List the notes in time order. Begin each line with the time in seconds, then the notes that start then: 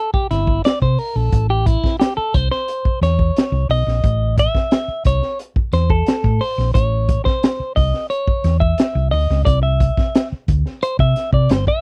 Already playing: A4
0.14 G4, muted fingered electric bass stroke, kick
0.31 G1 E4, snare, closed hi-hat
0.47 kick
0.64 D5, snare, closed hi-hat
0.82 C3 C5, kick
0.99 A#4, open hi-hat
1.16 A#1 A4
1.32 A1, kick, closed hi-hat
1.50 G4
1.66 E4, kick, closed hi-hat
1.84 kick, snare
2.00 G4, snare, closed hi-hat
2.17 A4, muted fingered electric bass stroke
2.34 C2 C5, kick, closed hi-hat
2.51 C5, snare
2.68 closed hi-hat
2.85 muted fingered electric bass stroke, kick
3.01 E2 C#5, snare, closed hi-hat
3.19 kick
3.36 snare, closed hi-hat
3.52 C2
3.69 B1 D#5, open hi-hat
3.87 A#1, snare
4.04 A1, kick, closed hi-hat
4.38 E5, kick, closed hi-hat
4.55 kick, snare
4.71 snare, closed hi-hat
4.88 muted fingered electric bass stroke
5.05 C2 C#5, kick, closed hi-hat
5.22 snare
5.39 closed hi-hat
5.56 muted fingered electric bass stroke, kick
5.73 E2 C5, snare, closed hi-hat
5.90 A4, kick
6.06 snare, closed hi-hat
6.24 A2, kick
6.41 C5, open hi-hat
6.58 A#1, snare
6.74 A1 C#5, kick, closed hi-hat
7.09 kick, closed hi-hat
7.25 C5, kick, snare
7.43 snare, closed hi-hat
7.60 muted fingered electric bass stroke
7.76 C2 D#5, kick, open hi-hat
7.94 snare
8.10 C#5, closed hi-hat
8.28 muted fingered electric bass stroke, kick
8.44 E2, snare, closed hi-hat
8.60 E5, kick
8.78 snare, closed hi-hat
8.95 C2
9.11 D2 D#5, open hi-hat
9.30 C#2, snare
9.45 C2 D5, kick, closed hi-hat
9.63 E5
9.80 kick, closed hi-hat
9.97 kick, snare
10.15 snare, closed hi-hat
10.32 muted fingered electric bass stroke
10.48 D2, kick, closed hi-hat
10.66 snare
10.82 C5, closed hi-hat
10.99 C3 E5, kick
11.16 snare, closed hi-hat
11.33 C3 D5, kick
11.49 G1 C5, snare, closed hi-hat
11.67 E5, kick